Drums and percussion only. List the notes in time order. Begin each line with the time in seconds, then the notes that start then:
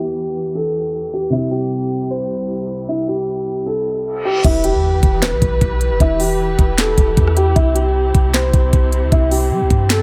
4.44 kick, closed hi-hat, crash
4.64 closed hi-hat
5.03 kick, closed hi-hat
5.22 snare, clap, closed hi-hat
5.42 kick, closed hi-hat
5.61 kick, closed hi-hat
5.81 closed hi-hat
6.00 kick, closed hi-hat
6.20 open hi-hat
6.59 kick, closed hi-hat
6.78 snare, clap, closed hi-hat
6.98 kick, closed hi-hat
7.17 kick, closed hi-hat
7.27 cross-stick
7.37 closed hi-hat
7.56 kick, closed hi-hat
7.76 closed hi-hat
8.15 kick, closed hi-hat
8.34 snare, clap, closed hi-hat
8.53 kick, closed hi-hat
8.73 kick, closed hi-hat
8.92 closed hi-hat
9.12 kick, closed hi-hat
9.31 open hi-hat
9.70 kick, closed hi-hat
9.90 snare, clap, closed hi-hat